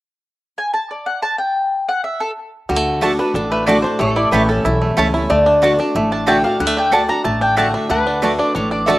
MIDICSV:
0, 0, Header, 1, 7, 480
1, 0, Start_track
1, 0, Key_signature, 2, "major"
1, 0, Tempo, 325380
1, 136, Time_signature, 4, 2, 24, 8
1, 13259, End_track
2, 0, Start_track
2, 0, Title_t, "Mandolin"
2, 0, Program_c, 0, 25
2, 856, Note_on_c, 0, 80, 76
2, 1080, Note_off_c, 0, 80, 0
2, 1086, Note_on_c, 0, 81, 84
2, 1328, Note_off_c, 0, 81, 0
2, 1339, Note_on_c, 0, 74, 61
2, 1567, Note_on_c, 0, 78, 75
2, 1569, Note_off_c, 0, 74, 0
2, 1801, Note_off_c, 0, 78, 0
2, 1807, Note_on_c, 0, 81, 97
2, 2034, Note_off_c, 0, 81, 0
2, 2040, Note_on_c, 0, 79, 74
2, 2722, Note_off_c, 0, 79, 0
2, 2782, Note_on_c, 0, 78, 80
2, 3003, Note_off_c, 0, 78, 0
2, 3009, Note_on_c, 0, 76, 69
2, 3250, Note_on_c, 0, 69, 91
2, 3251, Note_off_c, 0, 76, 0
2, 3395, Note_off_c, 0, 69, 0
2, 4704, Note_on_c, 0, 71, 77
2, 4928, Note_off_c, 0, 71, 0
2, 4934, Note_on_c, 0, 69, 71
2, 5173, Note_off_c, 0, 69, 0
2, 5187, Note_on_c, 0, 71, 102
2, 5399, Note_off_c, 0, 71, 0
2, 5405, Note_on_c, 0, 74, 96
2, 5631, Note_off_c, 0, 74, 0
2, 5637, Note_on_c, 0, 72, 80
2, 5878, Note_off_c, 0, 72, 0
2, 5904, Note_on_c, 0, 73, 74
2, 6132, Note_off_c, 0, 73, 0
2, 6138, Note_on_c, 0, 74, 99
2, 6359, Note_off_c, 0, 74, 0
2, 6365, Note_on_c, 0, 71, 77
2, 6608, Note_off_c, 0, 71, 0
2, 6619, Note_on_c, 0, 69, 68
2, 7756, Note_off_c, 0, 69, 0
2, 9027, Note_on_c, 0, 81, 91
2, 9252, Note_off_c, 0, 81, 0
2, 9264, Note_on_c, 0, 79, 91
2, 9495, Note_off_c, 0, 79, 0
2, 9500, Note_on_c, 0, 77, 80
2, 9728, Note_off_c, 0, 77, 0
2, 9738, Note_on_c, 0, 78, 78
2, 9973, Note_off_c, 0, 78, 0
2, 10005, Note_on_c, 0, 79, 95
2, 10221, Note_off_c, 0, 79, 0
2, 10229, Note_on_c, 0, 81, 77
2, 10455, Note_off_c, 0, 81, 0
2, 10461, Note_on_c, 0, 82, 100
2, 10683, Note_off_c, 0, 82, 0
2, 10689, Note_on_c, 0, 81, 88
2, 10928, Note_off_c, 0, 81, 0
2, 10944, Note_on_c, 0, 79, 89
2, 11163, Note_off_c, 0, 79, 0
2, 11169, Note_on_c, 0, 78, 84
2, 11408, Note_off_c, 0, 78, 0
2, 11420, Note_on_c, 0, 76, 72
2, 11647, Note_off_c, 0, 76, 0
2, 11661, Note_on_c, 0, 78, 93
2, 12331, Note_off_c, 0, 78, 0
2, 12371, Note_on_c, 0, 74, 82
2, 12602, Note_off_c, 0, 74, 0
2, 12618, Note_on_c, 0, 73, 77
2, 12853, Note_off_c, 0, 73, 0
2, 12861, Note_on_c, 0, 74, 83
2, 13072, Note_on_c, 0, 76, 84
2, 13087, Note_off_c, 0, 74, 0
2, 13259, Note_off_c, 0, 76, 0
2, 13259, End_track
3, 0, Start_track
3, 0, Title_t, "Mandolin"
3, 0, Program_c, 1, 25
3, 4447, Note_on_c, 1, 57, 94
3, 4453, Note_on_c, 1, 66, 83
3, 4456, Note_on_c, 1, 74, 83
3, 4465, Note_on_c, 1, 81, 104
3, 4588, Note_off_c, 1, 57, 0
3, 4592, Note_off_c, 1, 66, 0
3, 4593, Note_off_c, 1, 74, 0
3, 4597, Note_off_c, 1, 81, 0
3, 5411, Note_on_c, 1, 57, 100
3, 5420, Note_on_c, 1, 66, 91
3, 5422, Note_on_c, 1, 74, 94
3, 5432, Note_on_c, 1, 81, 102
3, 5550, Note_off_c, 1, 57, 0
3, 5555, Note_off_c, 1, 66, 0
3, 5556, Note_off_c, 1, 74, 0
3, 5561, Note_off_c, 1, 81, 0
3, 6379, Note_on_c, 1, 57, 78
3, 6386, Note_on_c, 1, 64, 101
3, 6391, Note_on_c, 1, 73, 86
3, 6395, Note_on_c, 1, 81, 97
3, 6514, Note_off_c, 1, 57, 0
3, 6517, Note_off_c, 1, 64, 0
3, 6520, Note_off_c, 1, 73, 0
3, 6522, Note_off_c, 1, 81, 0
3, 7329, Note_on_c, 1, 57, 96
3, 7338, Note_on_c, 1, 64, 109
3, 7346, Note_on_c, 1, 73, 99
3, 7351, Note_on_c, 1, 81, 111
3, 7469, Note_off_c, 1, 57, 0
3, 7473, Note_off_c, 1, 64, 0
3, 7477, Note_off_c, 1, 73, 0
3, 7479, Note_off_c, 1, 81, 0
3, 8289, Note_on_c, 1, 57, 78
3, 8298, Note_on_c, 1, 66, 92
3, 8303, Note_on_c, 1, 74, 84
3, 8308, Note_on_c, 1, 81, 96
3, 8428, Note_off_c, 1, 57, 0
3, 8433, Note_off_c, 1, 66, 0
3, 8435, Note_off_c, 1, 74, 0
3, 8438, Note_off_c, 1, 81, 0
3, 9242, Note_on_c, 1, 57, 85
3, 9249, Note_on_c, 1, 66, 96
3, 9254, Note_on_c, 1, 74, 92
3, 9261, Note_on_c, 1, 81, 106
3, 9384, Note_off_c, 1, 57, 0
3, 9387, Note_off_c, 1, 66, 0
3, 9390, Note_off_c, 1, 74, 0
3, 9394, Note_off_c, 1, 81, 0
3, 10203, Note_on_c, 1, 57, 81
3, 10210, Note_on_c, 1, 66, 100
3, 10219, Note_on_c, 1, 74, 88
3, 10221, Note_on_c, 1, 81, 95
3, 10344, Note_off_c, 1, 57, 0
3, 10348, Note_off_c, 1, 66, 0
3, 10352, Note_off_c, 1, 74, 0
3, 10353, Note_off_c, 1, 81, 0
3, 11161, Note_on_c, 1, 57, 90
3, 11167, Note_on_c, 1, 66, 97
3, 11171, Note_on_c, 1, 74, 99
3, 11183, Note_on_c, 1, 81, 94
3, 11303, Note_off_c, 1, 57, 0
3, 11306, Note_off_c, 1, 66, 0
3, 11308, Note_off_c, 1, 74, 0
3, 11314, Note_off_c, 1, 81, 0
3, 12124, Note_on_c, 1, 57, 81
3, 12131, Note_on_c, 1, 66, 77
3, 12139, Note_on_c, 1, 74, 91
3, 12147, Note_on_c, 1, 81, 93
3, 12264, Note_off_c, 1, 57, 0
3, 12267, Note_off_c, 1, 66, 0
3, 12272, Note_off_c, 1, 74, 0
3, 12276, Note_off_c, 1, 81, 0
3, 13086, Note_on_c, 1, 57, 88
3, 13094, Note_on_c, 1, 66, 101
3, 13100, Note_on_c, 1, 74, 103
3, 13105, Note_on_c, 1, 81, 111
3, 13225, Note_off_c, 1, 57, 0
3, 13229, Note_off_c, 1, 66, 0
3, 13232, Note_off_c, 1, 74, 0
3, 13235, Note_off_c, 1, 81, 0
3, 13259, End_track
4, 0, Start_track
4, 0, Title_t, "Resonator guitar played with a steel bar"
4, 0, Program_c, 2, 25
4, 3976, Note_on_c, 2, 66, 86
4, 5878, Note_off_c, 2, 66, 0
4, 5884, Note_on_c, 2, 69, 96
4, 7227, Note_off_c, 2, 69, 0
4, 7227, Note_on_c, 2, 67, 96
4, 7808, Note_off_c, 2, 67, 0
4, 7814, Note_on_c, 2, 74, 109
4, 11358, Note_off_c, 2, 74, 0
4, 11662, Note_on_c, 2, 71, 97
4, 13259, Note_off_c, 2, 71, 0
4, 13259, End_track
5, 0, Start_track
5, 0, Title_t, "Five-string banjo"
5, 0, Program_c, 3, 105
5, 3970, Note_on_c, 3, 55, 71
5, 4076, Note_off_c, 3, 55, 0
5, 4076, Note_on_c, 3, 57, 74
5, 4456, Note_on_c, 3, 62, 51
5, 4458, Note_off_c, 3, 57, 0
5, 4691, Note_off_c, 3, 62, 0
5, 4709, Note_on_c, 3, 62, 60
5, 4925, Note_off_c, 3, 62, 0
5, 4943, Note_on_c, 3, 62, 64
5, 5189, Note_on_c, 3, 57, 55
5, 5408, Note_off_c, 3, 62, 0
5, 5426, Note_on_c, 3, 62, 57
5, 5650, Note_off_c, 3, 62, 0
5, 5668, Note_on_c, 3, 62, 57
5, 5887, Note_off_c, 3, 57, 0
5, 5893, Note_on_c, 3, 57, 71
5, 5900, Note_off_c, 3, 62, 0
5, 6142, Note_on_c, 3, 64, 60
5, 6379, Note_on_c, 3, 67, 53
5, 6620, Note_on_c, 3, 61, 60
5, 6810, Note_off_c, 3, 64, 0
5, 6859, Note_on_c, 3, 64, 72
5, 7054, Note_off_c, 3, 67, 0
5, 7099, Note_off_c, 3, 57, 0
5, 7104, Note_on_c, 3, 57, 57
5, 7289, Note_off_c, 3, 61, 0
5, 7338, Note_on_c, 3, 61, 60
5, 7533, Note_off_c, 3, 64, 0
5, 7580, Note_on_c, 3, 64, 63
5, 7816, Note_off_c, 3, 57, 0
5, 7816, Note_off_c, 3, 64, 0
5, 7817, Note_off_c, 3, 61, 0
5, 7822, Note_on_c, 3, 57, 73
5, 8058, Note_on_c, 3, 62, 67
5, 8303, Note_off_c, 3, 62, 0
5, 8303, Note_on_c, 3, 62, 54
5, 8550, Note_off_c, 3, 62, 0
5, 8550, Note_on_c, 3, 62, 62
5, 8784, Note_off_c, 3, 57, 0
5, 8790, Note_on_c, 3, 57, 69
5, 9030, Note_off_c, 3, 62, 0
5, 9030, Note_on_c, 3, 62, 50
5, 9251, Note_off_c, 3, 57, 0
5, 9257, Note_on_c, 3, 57, 71
5, 9507, Note_off_c, 3, 62, 0
5, 9507, Note_on_c, 3, 62, 59
5, 9734, Note_off_c, 3, 57, 0
5, 9740, Note_on_c, 3, 55, 69
5, 9835, Note_off_c, 3, 55, 0
5, 9835, Note_on_c, 3, 57, 68
5, 9982, Note_off_c, 3, 62, 0
5, 9988, Note_on_c, 3, 62, 61
5, 10215, Note_off_c, 3, 57, 0
5, 10217, Note_off_c, 3, 62, 0
5, 10217, Note_on_c, 3, 62, 51
5, 10459, Note_off_c, 3, 62, 0
5, 10459, Note_on_c, 3, 62, 59
5, 10685, Note_on_c, 3, 57, 59
5, 10936, Note_off_c, 3, 62, 0
5, 10936, Note_on_c, 3, 62, 57
5, 11165, Note_off_c, 3, 57, 0
5, 11171, Note_on_c, 3, 57, 67
5, 11418, Note_off_c, 3, 62, 0
5, 11418, Note_on_c, 3, 62, 60
5, 11641, Note_off_c, 3, 57, 0
5, 11647, Note_on_c, 3, 57, 73
5, 11900, Note_off_c, 3, 62, 0
5, 11900, Note_on_c, 3, 62, 64
5, 12123, Note_off_c, 3, 57, 0
5, 12129, Note_on_c, 3, 57, 56
5, 12364, Note_off_c, 3, 62, 0
5, 12381, Note_on_c, 3, 62, 59
5, 12592, Note_off_c, 3, 62, 0
5, 12610, Note_on_c, 3, 62, 72
5, 12834, Note_off_c, 3, 62, 0
5, 12852, Note_on_c, 3, 62, 57
5, 13087, Note_off_c, 3, 57, 0
5, 13093, Note_on_c, 3, 57, 71
5, 13259, Note_off_c, 3, 57, 0
5, 13259, Note_off_c, 3, 62, 0
5, 13259, End_track
6, 0, Start_track
6, 0, Title_t, "Steel-string acoustic guitar"
6, 0, Program_c, 4, 25
6, 3975, Note_on_c, 4, 50, 83
6, 4425, Note_off_c, 4, 50, 0
6, 4443, Note_on_c, 4, 50, 88
6, 4457, Note_on_c, 4, 57, 85
6, 4466, Note_on_c, 4, 62, 90
6, 4476, Note_on_c, 4, 66, 104
6, 4685, Note_off_c, 4, 50, 0
6, 4686, Note_off_c, 4, 66, 0
6, 4692, Note_off_c, 4, 57, 0
6, 4697, Note_off_c, 4, 62, 0
6, 4703, Note_on_c, 4, 66, 62
6, 4734, Note_on_c, 4, 62, 53
6, 4929, Note_off_c, 4, 66, 0
6, 4944, Note_off_c, 4, 62, 0
6, 4955, Note_on_c, 4, 45, 93
6, 5418, Note_on_c, 4, 50, 78
6, 5431, Note_on_c, 4, 57, 92
6, 5438, Note_on_c, 4, 62, 99
6, 5448, Note_on_c, 4, 66, 106
6, 5646, Note_off_c, 4, 66, 0
6, 5653, Note_off_c, 4, 50, 0
6, 5659, Note_off_c, 4, 57, 0
6, 5663, Note_off_c, 4, 62, 0
6, 5664, Note_on_c, 4, 66, 54
6, 5696, Note_on_c, 4, 62, 47
6, 5859, Note_off_c, 4, 45, 0
6, 5889, Note_off_c, 4, 66, 0
6, 5906, Note_off_c, 4, 62, 0
6, 5911, Note_on_c, 4, 45, 82
6, 6377, Note_on_c, 4, 52, 90
6, 6388, Note_on_c, 4, 57, 93
6, 6403, Note_on_c, 4, 61, 88
6, 6408, Note_on_c, 4, 64, 96
6, 6607, Note_off_c, 4, 64, 0
6, 6612, Note_off_c, 4, 52, 0
6, 6618, Note_off_c, 4, 57, 0
6, 6625, Note_off_c, 4, 61, 0
6, 6625, Note_on_c, 4, 64, 69
6, 6656, Note_on_c, 4, 61, 50
6, 6817, Note_off_c, 4, 45, 0
6, 6849, Note_off_c, 4, 64, 0
6, 6865, Note_off_c, 4, 61, 0
6, 6870, Note_on_c, 4, 40, 97
6, 7327, Note_on_c, 4, 52, 95
6, 7344, Note_on_c, 4, 57, 89
6, 7355, Note_on_c, 4, 61, 95
6, 7363, Note_on_c, 4, 64, 93
6, 7563, Note_off_c, 4, 64, 0
6, 7567, Note_off_c, 4, 52, 0
6, 7575, Note_off_c, 4, 57, 0
6, 7580, Note_off_c, 4, 61, 0
6, 7580, Note_on_c, 4, 64, 62
6, 7617, Note_on_c, 4, 61, 47
6, 7776, Note_off_c, 4, 40, 0
6, 7807, Note_off_c, 4, 64, 0
6, 7817, Note_on_c, 4, 50, 81
6, 7825, Note_off_c, 4, 61, 0
6, 8269, Note_off_c, 4, 50, 0
6, 8287, Note_on_c, 4, 50, 90
6, 8300, Note_on_c, 4, 57, 81
6, 8316, Note_on_c, 4, 62, 103
6, 8321, Note_on_c, 4, 66, 97
6, 8517, Note_off_c, 4, 66, 0
6, 8526, Note_off_c, 4, 50, 0
6, 8533, Note_off_c, 4, 57, 0
6, 8535, Note_on_c, 4, 66, 71
6, 8541, Note_off_c, 4, 62, 0
6, 8570, Note_on_c, 4, 62, 49
6, 8764, Note_off_c, 4, 66, 0
6, 8781, Note_off_c, 4, 62, 0
6, 8785, Note_on_c, 4, 45, 92
6, 9248, Note_on_c, 4, 50, 82
6, 9265, Note_on_c, 4, 57, 82
6, 9269, Note_on_c, 4, 62, 91
6, 9278, Note_on_c, 4, 66, 96
6, 9480, Note_off_c, 4, 66, 0
6, 9486, Note_off_c, 4, 50, 0
6, 9494, Note_off_c, 4, 57, 0
6, 9496, Note_off_c, 4, 62, 0
6, 9497, Note_on_c, 4, 66, 62
6, 9526, Note_on_c, 4, 62, 47
6, 9692, Note_off_c, 4, 45, 0
6, 9724, Note_off_c, 4, 66, 0
6, 9739, Note_off_c, 4, 62, 0
6, 9741, Note_on_c, 4, 50, 86
6, 10193, Note_off_c, 4, 50, 0
6, 10210, Note_on_c, 4, 50, 79
6, 10227, Note_on_c, 4, 57, 88
6, 10233, Note_on_c, 4, 62, 86
6, 10247, Note_on_c, 4, 66, 89
6, 10433, Note_off_c, 4, 66, 0
6, 10447, Note_off_c, 4, 50, 0
6, 10451, Note_on_c, 4, 66, 59
6, 10455, Note_off_c, 4, 57, 0
6, 10458, Note_off_c, 4, 62, 0
6, 10486, Note_on_c, 4, 62, 49
6, 10681, Note_off_c, 4, 66, 0
6, 10695, Note_on_c, 4, 45, 96
6, 10698, Note_off_c, 4, 62, 0
6, 11167, Note_on_c, 4, 50, 90
6, 11184, Note_on_c, 4, 57, 93
6, 11196, Note_on_c, 4, 62, 90
6, 11201, Note_on_c, 4, 66, 103
6, 11607, Note_off_c, 4, 45, 0
6, 11626, Note_off_c, 4, 50, 0
6, 11635, Note_off_c, 4, 57, 0
6, 11641, Note_off_c, 4, 62, 0
6, 11643, Note_off_c, 4, 66, 0
6, 11653, Note_on_c, 4, 50, 89
6, 12112, Note_off_c, 4, 50, 0
6, 12130, Note_on_c, 4, 50, 83
6, 12137, Note_on_c, 4, 57, 92
6, 12147, Note_on_c, 4, 62, 99
6, 12154, Note_on_c, 4, 66, 99
6, 12588, Note_off_c, 4, 50, 0
6, 12591, Note_off_c, 4, 57, 0
6, 12596, Note_off_c, 4, 62, 0
6, 12600, Note_off_c, 4, 66, 0
6, 12628, Note_on_c, 4, 45, 86
6, 13097, Note_on_c, 4, 50, 88
6, 13112, Note_on_c, 4, 57, 80
6, 13121, Note_on_c, 4, 62, 109
6, 13129, Note_on_c, 4, 66, 88
6, 13259, Note_off_c, 4, 45, 0
6, 13259, Note_off_c, 4, 50, 0
6, 13259, Note_off_c, 4, 57, 0
6, 13259, Note_off_c, 4, 62, 0
6, 13259, Note_off_c, 4, 66, 0
6, 13259, End_track
7, 0, Start_track
7, 0, Title_t, "Upright bass"
7, 0, Program_c, 5, 32
7, 3976, Note_on_c, 5, 38, 75
7, 4692, Note_off_c, 5, 38, 0
7, 4929, Note_on_c, 5, 33, 85
7, 5648, Note_off_c, 5, 33, 0
7, 5903, Note_on_c, 5, 33, 90
7, 6258, Note_off_c, 5, 33, 0
7, 6372, Note_on_c, 5, 33, 90
7, 6782, Note_off_c, 5, 33, 0
7, 6855, Note_on_c, 5, 35, 89
7, 7264, Note_off_c, 5, 35, 0
7, 7341, Note_on_c, 5, 37, 76
7, 7747, Note_off_c, 5, 37, 0
7, 7824, Note_on_c, 5, 38, 88
7, 8536, Note_off_c, 5, 38, 0
7, 8776, Note_on_c, 5, 33, 83
7, 9490, Note_off_c, 5, 33, 0
7, 9734, Note_on_c, 5, 38, 83
7, 10449, Note_off_c, 5, 38, 0
7, 10694, Note_on_c, 5, 33, 82
7, 11408, Note_off_c, 5, 33, 0
7, 11654, Note_on_c, 5, 38, 90
7, 12368, Note_off_c, 5, 38, 0
7, 12619, Note_on_c, 5, 33, 81
7, 13259, Note_off_c, 5, 33, 0
7, 13259, End_track
0, 0, End_of_file